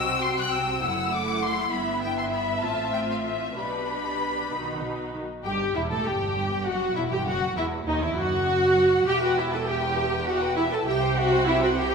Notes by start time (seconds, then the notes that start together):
Already playing: C2 C3 C4 F#4 G5 E6
0.22 C6
0.38 F#6
0.51 E6
0.82 F#1 F#2 A3 E4 F#5
1.12 D6
1.42 C6
1.71 G1 G2 B3 E5 B5
2.02 G5
2.18 C6
2.32 B5
2.61 A1 A2 C4 F4 A5
2.93 G5
3.10 F5
3.26 E5
3.57 B1 B2 D4 G4 B4 B5
4.51 B1 D#3 D#4 F#4
4.82 B2
5.13 D#3
5.44 G1 G2 G4 G5
5.74 E1 E2 E4 E5
5.90 A2 A4 A5
6.05 G1 G2 G4 G5
6.65 F#1 F#2 F#4 F#5
6.96 E1 E2 E4 E5
7.11 G2 G4 G5
7.26 F#1 F#2 F#4 F#5
7.56 E1 E2 E4 E5
7.86 D#2 D#4 D#5
8.01 E2 E4 E5
8.16 F#1 F#2 F#4 F#5
9.07 E1 E2 G4 E5 G5
9.23 F#4 B4 F#5 G5
9.37 E4 G4 E5
9.52 A4 B4 G5 A5
9.67 G4 E5 G5
9.81 B4 G5
9.96 G4 E5
10.12 B4 G5
10.27 F#4 G4 E5 F#5
10.41 B4 G5
10.56 E4 G4 E5
10.71 A4 B4 G5 A5
10.86 C2 C3 G4 E5 G5
11.01 C5 G5
11.17 F#4 G4 E5 F#5
11.32 C5 G5
11.46 E4 G4 E5
11.61 F#4 C5 F#5 G5
11.77 G4 E5 G5
11.91 C5 G5